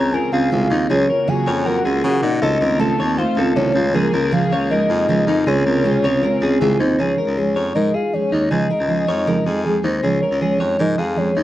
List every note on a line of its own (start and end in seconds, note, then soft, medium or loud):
0.00 0.19 C#2 medium
0.00 0.89 C#3 medium
0.00 0.12 C4 soft
0.00 0.88 C4 medium
0.00 0.13 F4 soft
0.00 0.88 F4 medium
0.00 0.13 G#4 medium
0.00 0.14 C#5 medium
0.00 0.14 A#5 loud
0.12 0.32 G#3 medium
0.12 0.33 C4 medium
0.12 0.31 F4 medium
0.12 0.30 G#4 medium
0.12 0.33 A#4 medium
0.12 0.32 G#5 loud
0.32 0.49 C#2 medium
0.32 0.51 C4 soft
0.32 0.51 F4 soft
0.32 0.51 G#4 medium
0.32 0.69 G#4 medium
0.32 0.50 F5 loud
0.51 0.68 C2 medium
0.51 0.70 C#3 medium
0.51 0.71 G#3 medium
0.51 0.71 C4 medium
0.51 0.71 F4 medium
0.51 0.69 G#4 medium
0.51 0.87 F5 loud
0.70 0.87 D#2 medium
0.70 0.90 C4 soft
0.70 0.90 D#4 medium
0.70 0.90 F4 soft
0.70 0.90 G#4 medium
0.89 1.06 C#2 loud
0.89 1.09 C#3 medium
0.89 2.41 C#3 medium
0.89 1.09 F#3 medium
0.89 2.41 A#3 medium
0.89 1.09 C#4 medium
0.89 1.08 F4 medium
0.89 2.41 F#4 medium
0.89 1.09 G#4 medium
0.89 1.07 A#4 medium
0.89 1.30 C#5 loud
1.08 1.27 C#4 soft
1.08 1.27 F4 soft
1.08 1.28 A#4 medium
1.27 1.47 C#3 medium
1.27 1.47 F#3 medium
1.27 1.47 C#4 medium
1.27 1.47 F4 medium
1.27 1.47 G#4 medium
1.27 1.45 A#4 medium
1.27 1.67 G#5 loud
1.46 1.80 F2 loud
1.46 1.66 C#4 soft
1.46 1.66 F4 soft
1.46 1.66 A#4 soft
1.46 1.66 C#5 medium
1.65 1.85 F#3 medium
1.65 1.86 C#4 medium
1.65 1.85 F4 medium
1.65 1.85 A#4 medium
1.65 1.83 A#4 medium
1.65 2.03 F#5 loud
1.84 2.01 C#2 medium
1.84 2.03 C#4 soft
1.84 2.04 F4 medium
1.84 2.21 G#4 medium
1.84 2.04 A#4 medium
2.03 2.23 C#3 medium
2.03 2.20 C#3 loud
2.03 2.23 F#3 medium
2.03 2.23 C#4 medium
2.03 2.23 F4 medium
2.03 2.22 A#4 loud
2.03 2.43 F#5 loud
2.23 2.39 A#2 medium
2.23 2.43 C#4 soft
2.23 2.42 D#4 medium
2.23 2.43 F4 medium
2.23 2.42 A#4 medium
2.42 2.58 C#2 loud
2.42 2.61 C#3 medium
2.42 3.74 D#3 medium
2.42 3.74 A3 medium
2.42 2.62 A3 medium
2.42 2.62 C4 medium
2.42 2.61 D#4 medium
2.42 3.74 F4 medium
2.42 2.60 F4 medium
2.42 2.61 A4 loud
2.42 2.79 D#5 loud
2.61 2.93 C#2 loud
2.61 2.79 C4 soft
2.61 2.79 D#4 soft
2.61 2.80 F4 soft
2.61 2.80 A#4 medium
2.79 2.99 C#3 medium
2.79 2.99 A3 medium
2.79 2.99 C4 medium
2.79 2.98 D#4 loud
2.79 2.97 F4 loud
2.79 3.00 A4 medium
2.79 3.19 A5 loud
2.98 3.23 D#2 medium
2.98 3.17 C4 soft
2.98 3.18 D#4 soft
2.98 3.18 F4 medium
2.98 3.18 C#5 medium
3.17 3.37 A3 medium
3.17 3.37 C4 medium
3.17 3.37 D#4 medium
3.17 3.36 F4 medium
3.17 3.38 C5 medium
3.17 3.56 F5 loud
3.37 3.53 C#2 loud
3.37 3.55 C4 soft
3.37 3.56 D#4 medium
3.37 3.56 F4 medium
3.37 3.74 A4 medium
3.56 3.72 C2 medium
3.56 3.75 C#3 medium
3.56 3.75 A3 medium
3.56 3.75 C4 medium
3.56 3.75 D#4 medium
3.56 3.74 F4 medium
3.56 3.96 C#5 medium
3.74 4.07 C#2 loud
3.74 5.44 C#3 medium
3.74 3.93 G#3 soft
3.74 5.45 A#3 medium
3.74 3.93 F4 medium
3.74 3.95 F4 medium
3.74 5.44 G#4 medium
3.74 3.93 A#4 medium
3.93 4.13 C#3 medium
3.93 4.13 F3 medium
3.93 4.13 G#3 medium
3.93 4.13 F4 medium
3.93 4.14 G#4 loud
3.93 4.32 A#4 loud
3.93 4.11 A#4 medium
4.12 4.46 C#2 loud
4.12 4.31 G#3 soft
4.12 4.32 F4 soft
4.12 4.32 A#4 medium
4.12 4.33 A#4 medium
4.32 4.51 C#3 medium
4.32 4.51 F3 medium
4.32 4.52 G#3 medium
4.32 4.51 F4 medium
4.32 4.52 G#4 medium
4.32 4.50 A#4 medium
4.32 4.68 F5 loud
4.51 4.84 C#2 medium
4.51 4.70 G#3 soft
4.51 4.71 F4 soft
4.51 4.70 A#4 medium
4.51 4.71 C#5 medium
4.69 4.89 F3 medium
4.69 4.90 G#3 medium
4.69 4.89 F4 medium
4.69 4.90 A#4 medium
4.69 4.87 A#4 medium
4.69 5.49 D#5 loud
4.88 5.06 F2 medium
4.88 5.08 G#3 soft
4.88 5.08 F4 medium
4.88 5.26 G#4 medium
4.88 5.08 A#4 medium
5.08 5.25 C#2 medium
5.08 5.27 C#3 medium
5.08 5.28 F3 medium
5.08 5.28 G#3 medium
5.08 5.27 F4 medium
5.08 5.26 A#4 loud
5.27 5.43 F2 medium
5.27 5.45 G#3 medium
5.27 5.47 D#4 medium
5.27 5.46 F4 medium
5.27 5.46 A#4 medium
5.46 5.63 C#2 loud
5.46 6.98 C3 medium
5.46 5.65 C#3 medium
5.46 6.98 C#3 medium
5.46 5.65 G#3 medium
5.46 5.66 C4 medium
5.46 5.65 F4 medium
5.46 6.98 F4 medium
5.46 5.66 G#4 loud
5.46 5.64 G#4 medium
5.46 6.59 C#5 medium
5.65 5.98 C#2 loud
5.65 5.84 C4 soft
5.65 5.84 F4 soft
5.65 5.84 G#4 medium
5.65 5.86 A#4 medium
5.84 6.03 C#3 medium
5.84 6.04 G#3 medium
5.84 6.04 C4 medium
5.84 6.04 F4 loud
5.84 6.02 G#4 medium
5.84 6.04 G#4 medium
6.03 6.28 C#2 loud
6.03 6.22 C4 soft
6.03 6.23 F4 medium
6.03 6.23 G#4 medium
6.03 6.23 C#5 medium
6.22 6.42 G#3 medium
6.22 6.42 C4 medium
6.22 6.42 F4 medium
6.22 6.41 G#4 medium
6.22 6.42 A#4 medium
6.41 6.58 C#2 loud
6.41 6.60 C4 medium
6.41 6.61 F4 medium
6.41 6.61 G#4 medium
6.41 6.78 G#4 medium
6.59 6.77 C2 medium
6.59 6.80 C#3 loud
6.59 6.80 G#3 loud
6.59 6.80 C4 medium
6.59 6.80 F4 loud
6.59 6.78 G#4 medium
6.59 6.78 G#4 loud
6.79 6.96 D#2 medium
6.79 6.99 C4 medium
6.79 6.99 D#4 medium
6.79 6.99 F4 medium
6.79 6.99 G#4 medium
6.79 7.00 C5 medium
6.99 7.15 C#2 medium
6.99 7.18 C#3 medium
6.99 7.18 F3 medium
6.99 7.18 G#3 medium
6.99 7.18 D#4 medium
6.99 7.18 G#4 medium
6.99 7.17 G#4 medium
6.99 7.36 C#5 medium
7.18 7.36 G#3 soft
7.18 7.37 D#4 soft
7.18 7.37 G#4 medium
7.18 7.37 A#4 medium
7.27 7.51 C#2 medium
7.36 7.56 F3 medium
7.36 7.56 G#3 medium
7.36 7.56 D#4 medium
7.36 7.56 G#4 medium
7.36 7.54 G#4 medium
7.36 7.76 C#5 medium
7.56 7.72 F2 medium
7.56 7.75 G#3 soft
7.56 7.75 D#4 soft
7.56 7.75 G#4 soft
7.56 7.75 C#5 medium
7.75 7.91 G#2 medium
7.75 7.94 C#3 medium
7.75 7.94 F3 medium
7.75 7.94 G#3 medium
7.75 7.94 D#4 medium
7.75 7.93 G#4 medium
7.75 7.94 A#4 medium
7.75 7.96 D#5 medium
7.94 8.12 G#3 soft
7.94 8.13 D#4 soft
7.94 8.13 G#4 medium
7.94 8.30 G#4 medium
7.94 8.15 F5 medium
8.13 8.32 F3 medium
8.13 8.32 G#3 medium
8.13 8.32 D#4 medium
8.13 8.30 G#4 medium
8.13 8.51 C#5 medium
8.31 8.48 D#2 medium
8.31 8.50 G#3 soft
8.31 8.51 D#4 medium
8.31 8.50 D#4 soft
8.31 8.51 G#4 soft
8.50 8.67 C#2 loud
8.50 8.70 C#3 medium
8.50 8.70 F3 medium
8.50 8.70 G#3 medium
8.50 8.69 D#4 medium
8.50 8.70 G#4 medium
8.50 8.68 G#4 medium
8.50 9.64 D#5 loud
8.69 8.88 G#3 soft
8.69 8.88 D#4 soft
8.69 8.89 G#4 soft
8.69 8.89 A#4 medium
8.79 9.04 C#2 medium
8.88 9.08 F3 medium
8.88 9.08 G#3 medium
8.88 9.07 D#4 medium
8.88 9.08 G#4 medium
8.88 9.06 G#4 medium
9.07 9.41 F2 medium
9.07 9.26 G#3 soft
9.07 9.26 D#4 soft
9.07 9.27 G#4 medium
9.07 9.27 C#5 medium
9.27 9.46 C#3 medium
9.27 9.46 F3 medium
9.27 9.46 G#3 medium
9.27 9.46 D#4 loud
9.27 9.45 G#4 loud
9.27 9.46 A#4 medium
9.46 9.78 F2 medium
9.46 9.65 G#3 soft
9.46 9.66 D#4 medium
9.46 9.65 G#4 medium
9.46 9.82 G#4 medium
9.65 9.85 F3 medium
9.65 9.85 G#3 medium
9.65 9.84 D#4 medium
9.65 9.83 G#4 medium
9.84 10.00 D#2 medium
9.84 10.03 G#3 soft
9.84 10.03 D#4 medium
9.84 10.03 D#4 soft
9.84 10.03 G#4 medium
9.84 10.05 C5 medium
10.03 10.19 C#2 medium
10.03 10.22 C#3 medium
10.03 10.22 F3 medium
10.03 10.23 G#3 medium
10.03 10.23 D#4 medium
10.03 10.22 G#4 medium
10.03 10.21 G#4 medium
10.03 10.21 C#5 loud
10.21 10.41 G#3 soft
10.21 10.42 D#4 soft
10.21 10.41 G#4 soft
10.21 10.41 A#4 medium
10.21 10.40 C#5 medium
10.31 10.56 C#2 medium
10.41 10.60 F3 medium
10.41 10.61 G#3 medium
10.41 10.60 D#4 medium
10.41 10.61 G#4 medium
10.41 10.58 G#4 medium
10.41 10.82 C#5 loud
10.60 10.77 F2 medium
10.60 10.78 G#3 soft
10.60 10.79 D#4 soft
10.60 10.79 G#4 medium
10.60 10.79 C#5 medium
10.79 10.96 G#2 loud
10.79 10.98 C#3 medium
10.79 10.98 F3 medium
10.79 10.99 G#3 medium
10.79 10.98 D#4 medium
10.79 10.97 G#4 medium
10.79 10.98 A#4 medium
10.79 11.00 D#5 loud
10.98 11.31 F2 medium
10.98 11.15 G#3 soft
10.98 11.17 D#4 medium
10.98 11.17 G#4 medium
10.98 11.34 G#4 medium
10.98 11.19 F5 medium
11.16 11.36 F3 medium
11.16 11.36 G#3 medium
11.16 11.35 D#4 medium
11.16 11.34 G#4 medium
11.16 11.43 C#5 medium
11.35 11.43 D#2 medium
11.35 11.43 G#3 soft
11.35 11.43 D#4 soft
11.35 11.43 D#4 medium
11.35 11.43 G#4 medium